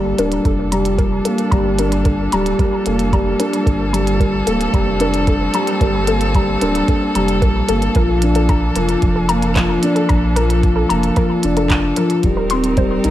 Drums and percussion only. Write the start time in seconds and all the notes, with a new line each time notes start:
0.18 closed hi-hat
0.32 closed hi-hat
0.45 kick, closed hi-hat
0.72 closed hi-hat
0.85 closed hi-hat
0.98 kick, closed hi-hat
1.25 closed hi-hat
1.38 closed hi-hat
1.52 kick, closed hi-hat
1.79 closed hi-hat
1.92 closed hi-hat
2.05 kick, closed hi-hat
2.32 closed hi-hat
2.46 closed hi-hat
2.59 kick, closed hi-hat
2.86 closed hi-hat
2.99 closed hi-hat
3.13 kick, closed hi-hat
3.40 closed hi-hat
3.53 closed hi-hat
3.67 kick, closed hi-hat
3.94 closed hi-hat
4.07 closed hi-hat
4.20 kick, closed hi-hat
4.47 closed hi-hat
4.61 closed hi-hat
4.74 kick, closed hi-hat
5.00 closed hi-hat
5.14 closed hi-hat
5.27 kick, closed hi-hat
5.54 closed hi-hat
5.67 closed hi-hat
5.81 kick, closed hi-hat
6.07 closed hi-hat
6.21 closed hi-hat
6.35 kick, closed hi-hat
6.61 closed hi-hat
6.75 closed hi-hat
6.88 kick, closed hi-hat
7.15 closed hi-hat
7.28 closed hi-hat
7.42 kick, closed hi-hat
7.69 closed hi-hat
7.82 closed hi-hat
7.95 kick, closed hi-hat
8.22 closed hi-hat
8.35 closed hi-hat
8.49 kick, closed hi-hat
8.76 closed hi-hat
8.89 closed hi-hat
9.02 kick, closed hi-hat
9.29 closed hi-hat
9.42 closed hi-hat
9.56 kick, clap, closed hi-hat
9.83 closed hi-hat
9.96 closed hi-hat
10.09 kick, closed hi-hat
10.36 closed hi-hat
10.50 closed hi-hat
10.63 kick, closed hi-hat
10.90 closed hi-hat
11.03 closed hi-hat
11.16 kick, closed hi-hat
11.43 closed hi-hat
11.57 closed hi-hat
11.70 kick, clap, closed hi-hat
11.96 closed hi-hat
12.10 closed hi-hat
12.23 kick, closed hi-hat
12.50 closed hi-hat
12.64 closed hi-hat
12.77 kick, closed hi-hat
13.04 closed hi-hat